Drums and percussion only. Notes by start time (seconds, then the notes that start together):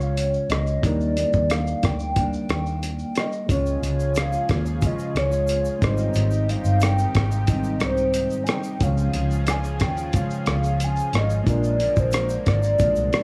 0.01 shaker
0.17 closed hi-hat, shaker
0.34 shaker
0.50 cross-stick, closed hi-hat, shaker
0.67 shaker
0.83 kick, closed hi-hat, shaker
1.01 shaker
1.17 closed hi-hat, shaker
1.33 kick, shaker
1.50 cross-stick, closed hi-hat, shaker
1.67 shaker
1.83 kick, cross-stick, closed hi-hat, shaker
2.00 shaker
2.16 kick, closed hi-hat, shaker
2.33 shaker
2.49 cross-stick, closed hi-hat, shaker
2.66 shaker
2.83 closed hi-hat, shaker
2.99 shaker
3.15 cross-stick, closed hi-hat, shaker
3.33 shaker
3.49 kick, closed hi-hat, shaker
3.66 shaker
3.83 closed hi-hat, shaker
3.99 shaker
4.15 closed hi-hat, shaker
4.16 cross-stick, shaker
4.33 shaker
4.49 kick, cross-stick, closed hi-hat, shaker
4.66 shaker
4.82 kick, closed hi-hat, shaker
4.99 shaker
5.16 cross-stick, closed hi-hat, shaker
5.32 shaker
5.47 closed hi-hat, shaker
5.49 shaker
5.65 shaker
5.82 kick, cross-stick, closed hi-hat, shaker
5.97 shaker
6.14 closed hi-hat, shaker
6.16 shaker
6.31 shaker
6.33 shaker
6.49 closed hi-hat, shaker
6.64 shaker
6.80 closed hi-hat, shaker
6.82 cross-stick, shaker
6.98 shaker
7.15 kick, cross-stick, closed hi-hat, shaker
7.31 shaker
7.47 kick, closed hi-hat, shaker
7.64 shaker
7.80 cross-stick, closed hi-hat, shaker
7.97 shaker
8.14 closed hi-hat, shaker
8.30 shaker
8.32 shaker
8.47 cross-stick, closed hi-hat, shaker
8.63 shaker
8.81 kick, closed hi-hat, shaker
8.82 shaker
8.97 shaker
8.99 shaker
9.14 closed hi-hat, shaker
9.31 shaker
9.32 shaker
9.47 cross-stick, closed hi-hat, shaker
9.64 shaker
9.80 kick, cross-stick, closed hi-hat, shaker
9.97 shaker
10.13 kick, closed hi-hat, shaker
10.16 shaker
10.30 shaker
10.33 shaker
10.46 cross-stick, closed hi-hat, shaker
10.64 shaker
10.80 closed hi-hat, shaker
10.96 shaker
10.99 shaker
11.13 cross-stick, closed hi-hat, shaker
11.30 shaker
11.47 kick, closed hi-hat, shaker
11.64 shaker
11.80 closed hi-hat, shaker
11.96 kick, shaker
12.11 closed hi-hat, shaker
12.13 cross-stick, shaker
12.29 shaker
12.46 kick, cross-stick, closed hi-hat, shaker
12.63 shaker
12.79 kick, closed hi-hat, shaker
12.96 shaker
13.13 cross-stick, closed hi-hat, shaker